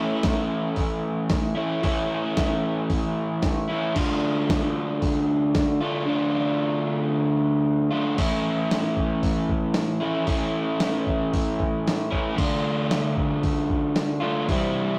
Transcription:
Already playing: overdriven electric guitar A2 E3 A3 C#4 E4
0.23 kick, snare, open hi-hat
0.76 kick, open hi-hat
1.29 kick, snare, open hi-hat
1.55 overdriven electric guitar A2 E3 A3 C#4 E4
1.82 overdriven electric guitar A2 E3 A3 C#4 E4, kick, open hi-hat
2.37 kick, snare, open hi-hat
2.90 kick, open hi-hat
3.42 kick, snare, open hi-hat
3.68 overdriven electric guitar A2 E3 A3 C#4 E4
3.95 overdriven electric guitar D3 A3 D4 F4, kick, crash
4.50 kick, snare, open hi-hat
5.02 kick, open hi-hat
5.55 kick, snare, open hi-hat
5.81 overdriven electric guitar D3 A3 D4 F4
6.06 overdriven electric guitar D3 A3 D4 F4
7.91 overdriven electric guitar D3 A3 D4 F4
8.17 overdriven electric guitar A2 E3 A3 C#4 E4, kick, open hi-hat, crash
8.71 snare, open hi-hat
8.97 kick
9.23 kick, open hi-hat
9.49 kick
9.74 snare, open hi-hat
10.00 overdriven electric guitar A2 E3 A3 C#4 E4
10.26 overdriven electric guitar A2 E3 A3 C#4 E4, kick, open hi-hat
10.80 snare, open hi-hat
11.07 kick
11.33 kick, open hi-hat
11.60 kick
11.87 snare, open hi-hat
12.11 overdriven electric guitar A2 E3 A3 C#4 E4, kick
12.36 overdriven electric guitar D3 A3 D4 F4, kick, crash
12.91 snare, open hi-hat
13.17 kick
13.43 kick, open hi-hat
13.70 kick
13.96 snare, open hi-hat
14.20 overdriven electric guitar D3 A3 D4 F4
14.48 overdriven electric guitar C3 E3 G3 C4 E4, kick, open hi-hat

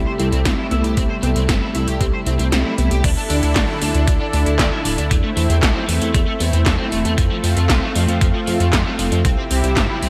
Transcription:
Already playing: analog synth pad C3 G3 A3 E4, synth arpeggio sound G4
0.07 overdriven electric guitar C5
0.20 analog synth bass C2, overdriven electric guitar C4, synth arpeggio sound E4, closed hi-hat
0.32 analog synth bass C2, overdriven electric guitar C4, closed hi-hat
0.45 analog synth bass C2, overdriven electric guitar C4, synth arpeggio sound C4, kick, snare, closed hi-hat
0.58 overdriven electric guitar E4
0.71 analog synth bass C2, synth arpeggio sound B3, overdriven electric guitar E4, closed hi-hat
0.84 analog synth bass C2, overdriven electric guitar G4, closed hi-hat
0.97 analog synth bass C2, synth arpeggio sound G3, overdriven electric guitar C4, kick, closed hi-hat
1.10 overdriven electric guitar C5
1.23 analog synth bass C2, synth arpeggio sound B3, overdriven electric guitar C4, closed hi-hat
1.36 analog synth bass C2, overdriven electric guitar C4, closed hi-hat
1.49 analog synth bass G1, overdriven electric guitar C4, synth arpeggio sound C4, kick, snare, closed hi-hat
1.62 overdriven electric guitar E4
1.75 analog synth bass C2, overdriven electric guitar E4, synth arpeggio sound E4, closed hi-hat
1.88 analog synth bass C2, overdriven electric guitar G4, closed hi-hat
2.01 analog synth bass C2, overdriven electric guitar C4, synth arpeggio sound G4, kick, closed hi-hat
2.14 overdriven electric guitar C5
2.26 analog synth bass C2, overdriven electric guitar C4, synth arpeggio sound E4, closed hi-hat
2.39 analog synth bass C2, overdriven electric guitar C4, closed hi-hat
2.52 analog synth bass C2, synth arpeggio sound C4, overdriven electric guitar C4, snare, closed hi-hat
2.66 overdriven electric guitar E4
2.78 analog synth bass C2, synth arpeggio sound B3, overdriven electric guitar E4, closed hi-hat
2.91 analog synth bass C2, overdriven electric guitar G4, closed hi-hat
3.04 analog synth bass D2, analog synth pad D3 D4 E4 A4, overdriven electric guitar D4, kick, closed hi-hat, crash
3.17 overdriven electric guitar D4
3.30 analog synth bass D2, overdriven electric guitar D4, open hi-hat
3.43 analog synth bass D2, overdriven electric guitar E4, closed hi-hat
3.56 analog synth bass A1, overdriven electric guitar D5, kick, snare, clap, closed hi-hat
3.69 overdriven electric guitar E4
3.82 analog synth bass D2, overdriven electric guitar D4, open hi-hat
3.95 analog synth bass D2, overdriven electric guitar D4, closed hi-hat
4.07 analog synth bass D2, overdriven electric guitar D4, kick, closed hi-hat
4.20 overdriven electric guitar D4
4.33 analog synth bass D2, overdriven electric guitar D4, open hi-hat
4.46 analog synth bass D2, overdriven electric guitar E4, closed hi-hat
4.59 analog synth bass D2, overdriven electric guitar D5, kick, snare, clap, closed hi-hat
4.72 overdriven electric guitar E4
4.85 analog synth bass D1, overdriven electric guitar D4, open hi-hat
4.98 analog synth bass D2, overdriven electric guitar D4, closed hi-hat
5.11 analog synth bass E2, overdriven electric guitar A3, analog synth pad A3 C4, kick, closed hi-hat
5.24 overdriven electric guitar A3
5.37 analog synth bass E2, overdriven electric guitar A3, open hi-hat
5.50 analog synth bass E2, overdriven electric guitar C4, closed hi-hat
5.63 analog synth bass B1, overdriven electric guitar A4, kick, snare, clap, closed hi-hat
5.75 overdriven electric guitar C4
5.88 analog synth bass E2, overdriven electric guitar A3, open hi-hat
6.02 analog synth bass E2, overdriven electric guitar A3, closed hi-hat
6.14 analog synth bass E2, overdriven electric guitar A3, kick, closed hi-hat
6.28 overdriven electric guitar A3
6.40 analog synth bass E2, overdriven electric guitar A3, open hi-hat
6.53 analog synth bass E2, overdriven electric guitar C4, closed hi-hat
6.66 analog synth bass E2, overdriven electric guitar A4, kick, snare, clap, closed hi-hat
6.79 overdriven electric guitar C4
6.92 analog synth bass E1, overdriven electric guitar A3, open hi-hat
7.05 analog synth bass E2, overdriven electric guitar A3, closed hi-hat
7.18 analog synth bass F2, overdriven electric guitar F3, analog synth pad F4, kick, closed hi-hat
7.31 overdriven electric guitar F3
7.44 analog synth bass F2, overdriven electric guitar F3, open hi-hat
7.57 analog synth bass F2, overdriven electric guitar A3, closed hi-hat
7.70 analog synth bass C2, overdriven electric guitar F4, kick, snare, clap, closed hi-hat
7.83 overdriven electric guitar A3
7.95 analog synth bass F2, overdriven electric guitar F3, open hi-hat
8.08 analog synth bass F2, overdriven electric guitar F3, closed hi-hat
8.21 analog synth bass F2, overdriven electric guitar F3, kick, closed hi-hat
8.34 overdriven electric guitar F3
8.47 analog synth bass F2, overdriven electric guitar F3, open hi-hat
8.60 analog synth bass F2, overdriven electric guitar A3, closed hi-hat
8.73 analog synth bass F2, overdriven electric guitar F4, kick, snare, clap, closed hi-hat
8.86 overdriven electric guitar A3
8.99 analog synth bass F1, overdriven electric guitar F3, open hi-hat
9.12 analog synth bass F2, overdriven electric guitar F3, closed hi-hat
9.25 analog synth bass C2, analog synth pad C3 E4 G4, overdriven electric guitar C4, kick, closed hi-hat
9.38 overdriven electric guitar C4
9.51 analog synth bass C2, overdriven electric guitar C4, open hi-hat
9.64 analog synth bass C2, overdriven electric guitar E4, closed hi-hat
9.77 analog synth bass G1, overdriven electric guitar C5, kick, snare, clap, closed hi-hat
9.90 overdriven electric guitar E4
10.03 analog synth bass C2, overdriven electric guitar C4, open hi-hat

